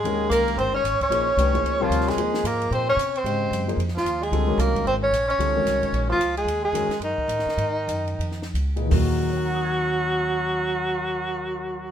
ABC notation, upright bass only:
X:1
M:4/4
L:1/8
Q:"Swing" 1/4=224
K:Abm
V:1 name="Upright bass" clef=bass
E,,2 =C,,2 =G,,,2 A,,, z | B,,,2 =C,,2 D,,2 =D,,2 | E,,2 A,,2 B,,2 =C,2 | A,,2 G,,2 =F,,2 E,,2 |
D,,2 =C,,2 A,,,2 B,,,2 | D,,2 =C,,2 B,,,2 D,,2 | E,,2 =F,, z G,, z =A,, z | A,,2 G,,2 =F,,2 D,,2 |
E,,8- | E,,8 |]